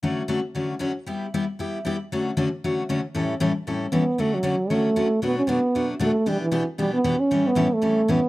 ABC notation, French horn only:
X:1
M:4/4
L:1/8
Q:"Swing" 1/4=231
K:D
V:1 name="French horn"
z8 | z8 | z8 | z6 B,2 |
A, F,3 A,4 | B, C B,3 z A,2 | G, E,2 z G, B,2 C- | C B,2 A,3 B,2 |]